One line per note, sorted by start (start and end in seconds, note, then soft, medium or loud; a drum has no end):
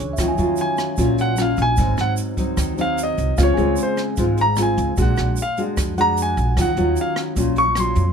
0.00 0.17 C#2 loud
0.00 0.16 E3 medium
0.00 0.17 D4 medium
0.00 0.17 G#4 medium
0.00 0.17 C#5 medium
0.00 0.35 C#5 soft
0.13 0.48 E5 soft
0.13 shaker medium
0.18 0.37 D#2 loud
0.18 0.96 D#3 medium
0.18 0.30 F#3 soft
0.18 0.30 C#4 medium
0.18 0.31 F4 medium
0.18 kick medium
0.18 cross-stick medium
0.18 closed hi-hat medium
0.28 0.61 G#5 soft
0.38 0.57 D#2 medium
0.38 0.95 F#3 medium
0.38 0.95 C#4 medium
0.38 0.96 F4 medium
0.38 closed hi-hat soft
0.38 shaker soft
0.56 closed hi-hat soft
0.56 shaker medium
0.61 1.16 G#5 medium
0.77 cross-stick medium
0.77 closed hi-hat soft
0.77 shaker soft
0.97 1.54 A#1 medium
0.97 1.76 A#2 medium
0.97 1.35 F#3 medium
0.97 1.35 C#4 medium
0.97 1.35 F4 medium
0.97 kick medium
0.97 closed hi-hat medium
0.97 shaker medium
1.18 1.39 F#5 medium
1.18 closed hi-hat soft
1.18 shaker soft
1.37 1.75 F#3 medium
1.37 1.75 C#4 medium
1.37 1.75 F4 medium
1.37 cross-stick medium
1.37 closed hi-hat soft
1.37 shaker medium
1.42 1.59 F5 medium
1.57 1.76 A#1 loud
1.57 closed hi-hat soft
1.57 shaker soft
1.62 1.97 G#5 loud
1.77 1.97 G#1 loud
1.77 2.56 G#2 medium
1.77 2.35 F#3 soft
1.77 2.35 C4 medium
1.77 2.35 D#4 medium
1.77 kick medium
1.77 closed hi-hat medium
1.77 shaker medium
1.97 2.17 G#1 medium
1.97 2.12 F#5 medium
1.97 cross-stick medium
1.97 closed hi-hat soft
1.97 shaker soft
2.17 closed hi-hat soft
2.17 shaker medium
2.37 2.75 F#3 medium
2.37 2.75 C4 medium
2.37 2.75 D#4 medium
2.37 kick medium
2.37 closed hi-hat soft
2.37 shaker soft
2.57 3.14 D#2 medium
2.57 3.36 D#3 medium
2.57 kick medium
2.57 cross-stick medium
2.57 closed hi-hat medium
2.57 shaker medium
2.77 3.36 F#3 medium
2.77 3.36 C4 medium
2.77 3.36 D#4 medium
2.77 2.99 F5 medium
2.77 closed hi-hat soft
2.77 shaker soft
2.98 closed hi-hat soft
2.98 shaker medium
3.03 3.38 D#5 medium
3.18 3.37 C2 medium
3.18 closed hi-hat soft
3.18 shaker soft
3.37 3.57 C#2 loud
3.37 4.16 C#3 medium
3.37 3.55 G#3 medium
3.37 3.55 C4 medium
3.37 3.55 F4 medium
3.37 4.24 F5 medium
3.37 kick medium
3.37 cross-stick medium
3.37 closed hi-hat medium
3.37 shaker medium
3.43 3.78 C#5 medium
3.54 3.76 C#2 medium
3.54 4.14 G#3 medium
3.54 4.14 C4 medium
3.54 4.14 F4 medium
3.54 4.37 G#5 soft
3.54 closed hi-hat soft
3.54 shaker soft
3.76 closed hi-hat soft
3.76 shaker medium
3.83 4.00 C5 medium
3.97 cross-stick medium
3.97 closed hi-hat soft
3.97 shaker soft
4.17 4.74 G#1 medium
4.17 4.96 G#2 medium
4.17 4.44 G#3 medium
4.17 4.44 C4 medium
4.17 4.44 F4 medium
4.17 kick medium
4.17 closed hi-hat medium
4.17 shaker medium
4.37 4.59 A#5 loud
4.37 closed hi-hat soft
4.37 shaker soft
4.56 4.94 G#3 medium
4.56 4.94 C4 medium
4.56 4.95 F4 medium
4.56 cross-stick medium
4.56 closed hi-hat soft
4.56 shaker medium
4.62 4.97 G#5 medium
4.78 4.96 C#2 loud
4.78 closed hi-hat soft
4.78 shaker soft
4.97 5.16 A#1 loud
4.97 5.75 A#2 medium
4.97 5.37 G#3 medium
4.97 5.37 D4 medium
4.97 5.38 F#4 medium
4.97 kick medium
4.97 closed hi-hat medium
4.97 shaker medium
5.02 5.37 F#5 medium
5.16 5.37 A#1 medium
5.16 cross-stick medium
5.16 closed hi-hat soft
5.16 shaker soft
5.36 closed hi-hat soft
5.36 shaker medium
5.42 5.59 F5 medium
5.57 5.94 G#3 medium
5.57 5.94 D4 medium
5.57 5.95 F#4 medium
5.57 closed hi-hat soft
5.57 shaker soft
5.77 6.33 F2 medium
5.77 kick medium
5.77 cross-stick medium
5.77 closed hi-hat medium
5.77 shaker medium
5.97 6.56 G#3 medium
5.97 6.56 D4 medium
5.97 6.56 F#4 medium
5.97 6.73 F#5 medium
5.97 6.18 A#5 loud
5.97 closed hi-hat soft
5.97 shaker soft
6.17 closed hi-hat soft
6.17 shaker medium
6.22 6.57 G#5 medium
6.37 6.56 A#1 loud
6.37 closed hi-hat soft
6.37 shaker soft
6.57 6.75 D#2 medium
6.57 7.35 D#3 medium
6.57 6.69 F#3 medium
6.57 6.69 C#4 medium
6.57 6.70 F4 medium
6.57 kick medium
6.57 cross-stick medium
6.57 closed hi-hat medium
6.57 shaker medium
6.61 6.97 F#5 medium
6.77 6.96 D#2 loud
6.77 7.34 F#3 medium
6.77 7.34 C#4 medium
6.77 7.34 F4 medium
6.77 closed hi-hat soft
6.77 shaker soft
6.96 closed hi-hat soft
6.96 shaker medium
7.01 7.18 F5 medium
7.16 cross-stick medium
7.16 closed hi-hat soft
7.16 shaker soft
7.36 7.93 A#1 medium
7.36 8.13 A#2 medium
7.36 7.63 F#3 medium
7.36 7.63 C#4 medium
7.36 7.63 F4 medium
7.36 kick medium
7.36 closed hi-hat medium
7.36 shaker medium
7.56 7.77 C#6 loud
7.56 closed hi-hat medium
7.56 shaker soft
7.75 8.03 F#3 medium
7.75 8.03 C#4 medium
7.75 8.03 F4 medium
7.75 cross-stick medium
7.75 closed hi-hat soft
7.75 shaker medium
7.80 8.13 C6 medium
7.95 8.13 F2 loud
7.95 closed hi-hat soft
7.95 shaker soft